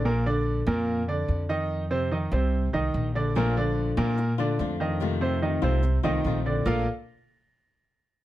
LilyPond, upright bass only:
\new Staff \with { instrumentName = "Upright bass" } { \clef bass \time 4/4 \key bes \major \tempo 4 = 145 bes,,4. f,4. f,4~ | f,4. c,4 c,8 bes,,4~ | bes,,4. bes,4. f,4~ | f,4. c,4 c,8 bes,,4 |
bes,,8 r2. r8 | }